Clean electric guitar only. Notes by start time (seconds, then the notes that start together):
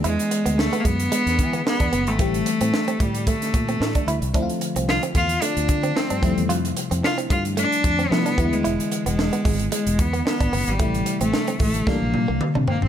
0.04 E4
0.31 muted clean electric guitar stroke
0.46 B3
0.58 muted clean electric guitar stroke
0.73 B3
0.85 G#3
1.12 G#3
1.39 muted clean electric guitar stroke
1.53 B3
1.66 muted clean electric guitar stroke
1.81 D4
1.93 B3
2.20 A3
2.47 muted clean electric guitar stroke
2.61 C4
2.73 muted clean electric guitar stroke
2.88 C4
3.00 A3
3.27 A3
3.54 muted clean electric guitar stroke
3.69 C4
3.81 muted clean electric guitar stroke
3.96 D4
4.08 E4
4.35 D4
4.62 muted clean electric guitar stroke
4.76 C4
4.89 muted clean electric guitar stroke
5.03 C4
5.16 A3
5.42 A3
5.69 muted clean electric guitar stroke
5.83 C4
5.96 muted clean electric guitar stroke
6.10 D4
6.23 C4
6.49 F4
6.77 muted clean electric guitar stroke
6.91 C4
7.03 muted clean electric guitar stroke
7.18 C4
7.30 A3
7.57 A3
7.84 muted clean electric guitar stroke
7.99 C4
8.11 muted clean electric guitar stroke
8.26 D4
8.38 B3
8.64 E4
8.92 muted clean electric guitar stroke
9.06 B3
9.19 muted clean electric guitar stroke
9.33 B3
9.45 G#3
9.72 G#3
9.99 muted clean electric guitar stroke
10.13 B3
10.26 muted clean electric guitar stroke
10.41 D4
10.53 B3
10.80 A3
11.06 muted clean electric guitar stroke
11.21 C4
11.33 muted clean electric guitar stroke
11.48 C4
11.60 A3
11.87 A3
12.14 muted clean electric guitar stroke
12.28 A#3
12.41 muted clean electric guitar stroke
12.55 D4
12.68 C4